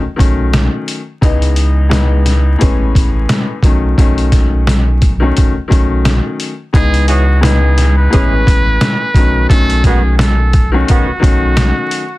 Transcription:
0.16 sub bass B1, upright piano D#3 F#3 A3 C#4, kick
0.20 closed hi-hat
0.53 snare, closed hi-hat
0.88 closed hi-hat
1.21 upright piano C#2 E3 G#3 B3 D#4, sub bass C#2, kick, closed hi-hat
1.42 closed hi-hat
1.56 closed hi-hat
1.89 upright piano C#2 E3 G#3 B3 D#4, snare
1.93 closed hi-hat
2.26 snare, closed hi-hat
2.58 sub bass A1, upright piano A2 E3 G#3 B3 C#4, kick, closed hi-hat
2.95 sub bass A1, kick, closed hi-hat
3.29 snare, closed hi-hat
3.63 sub bass B1, upright piano D#3 F#3 A3 C#4, kick, closed hi-hat
3.97 sub bass B1, upright piano D#3 F#3 A3 C#4, kick, closed hi-hat
4.18 closed hi-hat
4.32 kick, snare, closed hi-hat
4.67 snare, closed hi-hat
5.02 kick, closed hi-hat
5.20 upright piano D#3 F#3 A3 C#4
5.37 kick, closed hi-hat
5.68 sub bass B1, upright piano D#3 F#3 A3 C#4, kick
5.72 closed hi-hat
6.05 snare, closed hi-hat
6.40 closed hi-hat
6.73 upright piano C#2 E3 G#3 B3 D#4, sub bass C#2, muted trumpet G#4, kick, closed hi-hat
6.94 closed hi-hat
7.08 horn section E3 C#4 G#4, muted trumpet F#4, closed hi-hat
7.41 upright piano C#2 E3 G#3 B3 D#4, muted trumpet G#4, snare
7.45 closed hi-hat
7.78 snare, closed hi-hat
7.97 muted trumpet B4
8.10 sub bass A1, upright piano A2 E3 G#3 B3 C#4, horn section E3 C#4 G#4, kick, closed hi-hat
8.47 sub bass A1, kick, closed hi-hat
8.81 snare, closed hi-hat
9.14 sub bass B1, upright piano D#3 F#3 A3 C#4, kick, closed hi-hat
9.49 sub bass B1, upright piano D#3 F#3 A3 C#4, muted trumpet A4, kick, closed hi-hat
9.70 closed hi-hat
9.84 horn section D#3 B3 F#4, muted trumpet G#4, kick, snare, closed hi-hat
10.18 muted trumpet A4, snare, closed hi-hat
10.53 kick, closed hi-hat
10.72 upright piano D#3 F#3 A3 C#4, muted trumpet F#4
10.88 horn section D#3 B3 F#4, kick, closed hi-hat
11.20 sub bass B1, upright piano D#3 F#3 A3 C#4, kick
11.24 closed hi-hat
11.57 snare, closed hi-hat
11.91 closed hi-hat

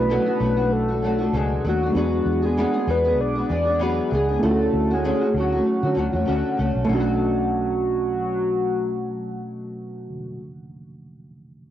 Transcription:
Already playing: fingered electric bass B1, reed electric piano A3 C#4 D4 E4, soft synth lead B4
0.09 nylon-string guitar B2 F#3 A3 D4 F#4
0.26 nylon-string guitar A3 D4 F#4
0.40 fingered electric bass B1, nylon-string guitar F#3 A3 D4 F#4
0.56 nylon-string guitar A3 D4 F#4
0.72 soft synth lead A4
0.88 nylon-string guitar A3 D4 F#4
1.02 nylon-string guitar F#3 A3 D4 F#4
1.18 nylon-string guitar D4 F#4
1.23 nylon-string guitar A3
1.33 fingered electric bass C#2, nylon-string guitar B2 F#3 A3 D4 F#4, soft synth lead G#4
1.64 fingered electric bass D#2, nylon-string guitar F#3 A3 D4, soft synth lead F#4
1.68 nylon-string guitar F#4
1.83 nylon-string guitar A3 D4 F#4
1.92 fingered electric bass E2, nylon-string guitar E3, reed electric piano G#3 B3 D4
1.96 nylon-string guitar B3 D4 G#4, reed electric piano F#4, soft synth lead F#4
2.26 fingered electric bass E2
2.42 nylon-string guitar B3 D4 G#4, soft synth lead G#4
2.57 nylon-string guitar E3 B3 D4 G#4
2.74 nylon-string guitar B3 D4 G#4
2.87 fingered electric bass E2, nylon-string guitar E3 B3 D4 G#4, soft synth lead B4
3.05 nylon-string guitar B3 D4 G#4
3.18 fingered electric bass B1, soft synth lead D5
3.35 nylon-string guitar B3 D4 G#4
3.49 fingered electric bass E2, nylon-string guitar E3 B3 D4 G#4, soft synth lead D5
3.65 nylon-string guitar D4 G#4
3.69 nylon-string guitar B3
3.79 nylon-string guitar E3 B3 D4 G#4, soft synth lead F#4
4.11 fingered electric bass C#2, nylon-string guitar E3 B3 D4, soft synth lead G#4
4.15 nylon-string guitar G#4
4.29 nylon-string guitar D4 G#4
4.33 nylon-string guitar B3
4.39 fingered electric bass D2, nylon-string guitar D3 A3, reed electric piano A3 C#4 E4
4.44 nylon-string guitar C#4 F#4, reed electric piano F4, soft synth lead A4
4.51 reed electric piano F#4
4.73 fingered electric bass D2
4.90 nylon-string guitar A3 C#4 F#4, soft synth lead G#4
5.04 nylon-string guitar D3 A3 C#4 F#4
5.21 nylon-string guitar A3 C#4 F#4
5.34 fingered electric bass D2, nylon-string guitar D3 A3 C#4
5.39 soft synth lead F#4, nylon-string guitar F#4
5.52 nylon-string guitar C#4 F#4
5.56 nylon-string guitar A3
5.83 fingered electric bass D3, nylon-string guitar A3 C#4 F#4
5.95 fingered electric bass D2, nylon-string guitar D3 A3 C#4
5.99 nylon-string guitar F#4
6.13 fingered electric bass E2, nylon-string guitar A3 C#4 F#4
6.25 fingered electric bass D2, nylon-string guitar D3 A3 C#4 F#4
6.57 fingered electric bass C#2, nylon-string guitar D3 A3 C#4 F#4
6.75 fingered electric bass B1
6.85 nylon-string guitar B2, reed electric piano A3 C#4
6.89 fingered electric bass B1, nylon-string guitar F#3, reed electric piano D4, soft synth lead F#4
6.93 nylon-string guitar A3 D4, reed electric piano F#4
7.00 nylon-string guitar F#4

